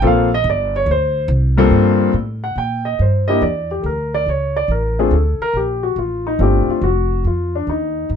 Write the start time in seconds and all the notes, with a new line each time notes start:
0.02 A#1 A#3 C4 F4 A4
0.07 F5
0.34 D#5
0.44 G1
0.50 D5
0.76 C#5
0.86 D2
0.91 C5
1.28 C2
1.57 G2 A#3 C4 F4 A4
1.71 G2
2.14 A2
2.44 F#5
2.56 A#2 G5
2.85 D#5
2.99 G2 C5
3.28 A#3 D4 E4 G4 D#5
3.41 E2 D5
3.71 G4
3.82 D2 A4
3.86 A#4
4.14 D5
4.26 C#2 C#5
4.57 D5
4.68 A1 A#4
4.99 A3 C4 D4 F4 G#4
5.11 D2 A4
5.39 A#4, muted upright bass stroke
5.53 A#1 G4
5.83 F#4
5.96 A1 F4
6.27 D#4
6.39 G1 A3 C4 D4 F4 G4
6.67 F4, muted upright bass stroke
6.82 F1 F#4
7.24 F2 F4
7.55 D4
7.67 D#2 D#4
8.10 F#2